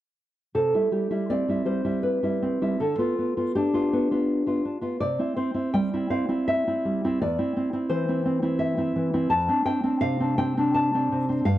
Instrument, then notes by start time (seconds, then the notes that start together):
nylon-string guitar
0.55 C3 A4
0.74 G3 E4
0.92 G3 G4
1.11 G3 E4
1.30 C4 D5
1.48 G3 E4
1.65 G3 C5
1.85 G3 E4
2.03 B4
2.23 G3 E4
2.42 C4
2.62 G3 E4
2.80 D3 A4
2.98 B3 F4
3.19 B3
3.37 B3 F4
3.55 D4 G4
3.73 B3 F4
3.93 B3
4.11 B3 F4
4.47 B3 F4
4.65 D4
4.81 B3 F4
5.00 C3 D5
5.19 C4 E4
5.36 C4 C5
5.54 C4 E4
5.74 G3 G5
5.93 C4 E4
6.10 C4 F5
6.29 C4 E4
6.48 E5
6.67 C4 E4
6.85 G3
7.04 C4 E4
7.22 E2 D5
7.39 C4 E4
7.57 C4
7.73 C4 E4
7.89 E3 C5
8.09 C4 E4
8.25 C4
8.42 C4 E4
8.59 E5
8.77 C4 E4
8.96 E3
9.14 C4 E4
9.30 F2 A5
9.48 C4 D4
9.65 C4 G5
9.84 C4 D4
10.01 C3 F5
10.20 C4 D4
10.38 C4 G5
10.57 C4 D4
10.74 A5
10.94 C4 D4
11.12 C3
11.29 C4 D4
11.45 G2 F5